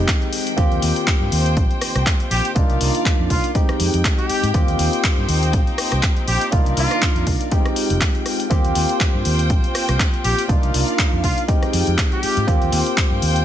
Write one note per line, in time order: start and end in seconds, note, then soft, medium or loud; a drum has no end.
0.00 4.50 D#3 medium
0.00 0.53 G#3 medium
0.00 0.57 G#3 medium
0.00 0.53 C4 medium
0.00 0.53 D#4 medium
0.00 0.54 G4 medium
0.00 2.53 G5 medium
0.08 kick loud
0.08 clap loud
0.08 closed hi-hat medium
0.22 closed hi-hat soft
0.33 open hi-hat loud
0.47 closed hi-hat medium
0.57 0.66 D#2 loud
0.57 2.51 A#3 medium
0.57 2.51 C4 medium
0.57 2.52 F4 medium
0.57 2.52 G4 loud
0.57 2.54 C5 medium
0.57 kick loud
0.57 closed hi-hat medium
0.71 0.79 D#2 medium
0.71 closed hi-hat soft
0.82 0.91 D#2 loud
0.82 open hi-hat loud
0.96 closed hi-hat medium
1.07 kick loud
1.07 clap loud
1.07 closed hi-hat medium
1.21 1.28 G2 medium
1.32 1.58 D#2 loud
1.32 open hi-hat loud
1.46 closed hi-hat soft
1.57 1.65 A#1 loud
1.57 kick loud
1.57 closed hi-hat medium
1.71 closed hi-hat soft
1.81 cross-stick medium
1.81 open hi-hat loud
1.95 2.03 C2 medium
1.95 cross-stick medium
1.95 closed hi-hat medium
2.06 kick loud
2.06 clap loud
2.06 closed hi-hat medium
2.20 closed hi-hat soft
2.31 2.39 A#1 medium
2.31 2.50 G4 loud
2.31 open hi-hat medium
2.45 closed hi-hat medium
2.55 2.64 C2 loud
2.55 3.50 A#3 medium
2.55 3.51 D4 medium
2.55 3.51 D#4 medium
2.55 3.51 F4 medium
2.55 3.54 A#4 medium
2.55 3.54 D5 medium
2.55 3.54 F5 medium
2.55 kick loud
2.55 closed hi-hat medium
2.70 2.77 C2 medium
2.70 closed hi-hat soft
2.81 2.89 C2 loud
2.81 open hi-hat loud
2.95 closed hi-hat medium
3.06 kick loud
3.06 clap loud
3.06 closed hi-hat medium
3.19 3.27 F2 medium
3.30 3.39 C2 loud
3.30 3.49 F4 medium
3.30 kick medium
3.30 open hi-hat medium
3.44 closed hi-hat medium
3.54 4.50 G#3 medium
3.54 4.53 G#3 medium
3.54 4.50 C4 medium
3.54 4.50 D#4 medium
3.54 4.50 G4 medium
3.54 6.50 G5 medium
3.54 kick loud
3.54 closed hi-hat medium
3.69 muted fingered electric bass stroke soft
3.69 cross-stick medium
3.69 closed hi-hat soft
3.80 3.88 F2 medium
3.80 open hi-hat loud
3.94 4.01 F2 loud
3.94 closed hi-hat medium
4.04 kick loud
4.04 clap loud
4.04 closed hi-hat medium
4.18 4.60 G4 medium
4.18 closed hi-hat soft
4.29 muted fingered electric bass stroke soft
4.29 open hi-hat medium
4.43 4.51 G#2 loud
4.43 closed hi-hat medium
4.54 4.63 D#2 loud
4.54 6.48 A#3 medium
4.54 6.48 C4 medium
4.54 6.51 D#4 medium
4.54 6.48 F4 medium
4.54 6.49 G4 loud
4.54 6.51 C5 medium
4.54 kick loud
4.54 closed hi-hat medium
4.68 4.75 D#2 medium
4.68 closed hi-hat soft
4.79 4.87 D#2 loud
4.79 open hi-hat loud
4.93 closed hi-hat medium
5.04 kick loud
5.04 clap loud
5.04 closed hi-hat medium
5.18 5.25 G2 medium
5.28 5.55 D#2 loud
5.28 open hi-hat medium
5.43 closed hi-hat medium
5.53 5.62 A#1 loud
5.53 kick loud
5.53 closed hi-hat medium
5.67 closed hi-hat soft
5.78 cross-stick medium
5.78 open hi-hat loud
5.92 5.99 C2 medium
5.92 cross-stick medium
5.92 closed hi-hat medium
6.03 kick loud
6.03 clap loud
6.03 closed hi-hat medium
6.17 closed hi-hat soft
6.28 6.36 A#1 medium
6.28 6.47 G4 medium
6.28 open hi-hat medium
6.41 closed hi-hat medium
6.52 6.61 C2 loud
6.52 7.51 D#3 medium
6.52 7.47 A#3 medium
6.52 7.47 D4 medium
6.52 7.48 D#4 medium
6.52 7.48 F4 medium
6.52 7.51 A#4 medium
6.52 7.51 D5 medium
6.52 7.51 F5 medium
6.52 kick loud
6.52 closed hi-hat medium
6.66 6.74 C2 medium
6.66 closed hi-hat soft
6.77 6.86 C2 loud
6.77 7.27 F4 loud
6.77 open hi-hat loud
6.91 cross-stick medium
6.91 closed hi-hat medium
7.02 kick loud
7.02 clap loud
7.02 closed hi-hat medium
7.16 7.23 F2 medium
7.16 closed hi-hat soft
7.27 7.35 C2 loud
7.27 kick medium
7.27 open hi-hat medium
7.41 closed hi-hat medium
7.51 8.46 G#3 medium
7.51 8.50 G#3 medium
7.51 8.47 C4 medium
7.51 8.47 D#4 medium
7.51 13.45 F4 medium
7.51 8.47 G4 medium
7.51 8.50 G5 medium
7.51 kick loud
7.51 closed hi-hat medium
7.65 cross-stick medium
7.65 closed hi-hat soft
7.76 open hi-hat loud
7.90 7.98 F1 loud
7.90 closed hi-hat medium
8.01 kick loud
8.01 clap loud
8.01 closed hi-hat medium
8.15 closed hi-hat soft
8.26 cross-stick medium
8.26 open hi-hat medium
8.40 closed hi-hat medium
8.50 8.59 D#2 loud
8.50 10.44 A#3 medium
8.50 10.45 C4 medium
8.50 10.45 F4 medium
8.50 10.45 G4 loud
8.50 10.48 C5 medium
8.50 10.47 G5 medium
8.50 kick loud
8.50 closed hi-hat medium
8.65 8.72 D#2 medium
8.65 closed hi-hat soft
8.75 8.84 D#2 loud
8.75 open hi-hat loud
8.89 closed hi-hat medium
9.00 kick loud
9.00 clap loud
9.00 closed hi-hat medium
9.15 9.22 G2 medium
9.25 9.52 D#2 loud
9.25 open hi-hat loud
9.39 closed hi-hat medium
9.50 9.58 A#1 loud
9.50 kick loud
9.50 closed hi-hat medium
9.64 closed hi-hat soft
9.75 cross-stick medium
9.75 open hi-hat loud
9.89 9.96 C2 medium
9.89 cross-stick medium
9.89 closed hi-hat medium
10.00 kick loud
10.00 clap loud
10.00 closed hi-hat medium
10.14 closed hi-hat soft
10.24 10.33 A#1 medium
10.24 10.43 G4 loud
10.24 open hi-hat medium
10.38 closed hi-hat medium
10.48 10.58 C2 loud
10.48 11.44 A#3 medium
10.48 11.44 D4 medium
10.48 11.44 D#4 medium
10.48 11.45 F4 medium
10.48 11.48 A#4 medium
10.48 11.48 D5 medium
10.48 11.47 F5 medium
10.48 kick loud
10.48 closed hi-hat medium
10.63 10.71 C2 medium
10.63 closed hi-hat soft
10.74 10.82 C2 loud
10.74 open hi-hat loud
10.88 closed hi-hat medium
10.99 kick loud
10.99 clap loud
10.99 closed hi-hat medium
11.13 11.20 F2 medium
11.24 11.32 C2 loud
11.24 11.43 F4 loud
11.24 kick medium
11.24 open hi-hat loud
11.38 closed hi-hat medium
11.48 12.43 G#3 medium
11.48 12.47 G#3 medium
11.48 12.43 C4 medium
11.48 12.43 D#4 medium
11.48 12.44 G4 medium
11.48 12.47 G5 medium
11.48 kick loud
11.48 closed hi-hat medium
11.62 muted fingered electric bass stroke soft
11.62 cross-stick medium
11.62 closed hi-hat soft
11.73 11.82 F2 medium
11.73 open hi-hat loud
11.87 11.95 F2 loud
11.87 closed hi-hat medium
11.98 kick loud
11.98 clap loud
11.98 closed hi-hat medium
12.12 12.53 G4 loud
12.12 closed hi-hat soft
12.23 muted fingered electric bass stroke soft
12.23 open hi-hat medium
12.37 12.44 G#2 loud
12.37 closed hi-hat medium
12.47 12.56 D#2 loud
12.47 13.45 A#3 loud
12.47 13.45 C4 medium
12.47 13.45 F4 medium
12.47 13.45 G4 loud
12.47 13.45 C5 medium
12.47 13.45 G5 loud
12.47 kick loud
12.47 closed hi-hat medium
12.62 12.69 D#2 medium
12.62 closed hi-hat soft
12.72 12.81 D#2 loud
12.72 open hi-hat loud
12.86 closed hi-hat medium
12.97 kick loud
12.97 clap loud
12.97 closed hi-hat medium
13.11 13.19 G2 medium
13.22 13.45 D#2 loud
13.22 open hi-hat loud
13.36 closed hi-hat medium